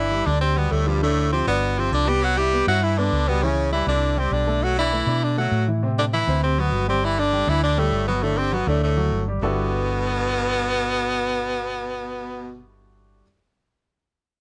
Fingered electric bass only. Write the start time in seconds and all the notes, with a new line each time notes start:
Already playing: G1
0.26 D2
0.71 D2
1.47 G1
1.92 C2
2.67 G2
3.12 C#2
3.87 C2
4.31 B1
5.07 B2
5.52 A2
6.27 D2
6.72 G1
7.47 D2
7.92 G1
8.67 D2
9.12 G1
9.42 G1